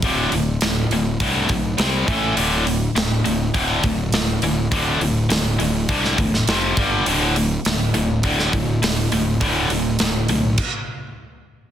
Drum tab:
CC |----------------|----------------|----------------|----------------|
HH |o-o-o-o-o-o-o-o-|o-o-o-o-o-o-o-o-|o-o-o-o-o-o-o-o-|o-o-o-o-o-o-o-o-|
SD |----o-------o---|----o-------o---|----o----o-oo---|----o----o--o---|
BD |o-------o-o---o-|--------o-o-----|o-------o-o---o-|--------o-o-----|

CC |--------x-------|
HH |o-o-o-o---------|
SD |----o-----------|
BD |o-------o-------|